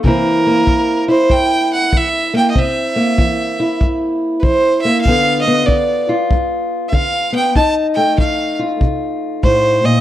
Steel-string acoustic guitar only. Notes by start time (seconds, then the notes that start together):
0.05 C3 E3 A#3 C4 E4
0.46 A#3
0.67 E3
1.08 E4
1.30 G2
1.93 E3
2.34 A#3
2.55 C3 C4
2.96 A#3
3.19 E3
3.60 E4
3.82 G2
4.44 E3
4.85 A#3
5.07 G2 D3 B3 F4
5.47 B3
5.67 D3
6.09 F4
6.32 G2
6.92 D3
7.32 B3
7.55 F2 D#4
7.97 A3
8.18 F3
8.59 F4
8.81 C3
9.43 A2
9.84 A#2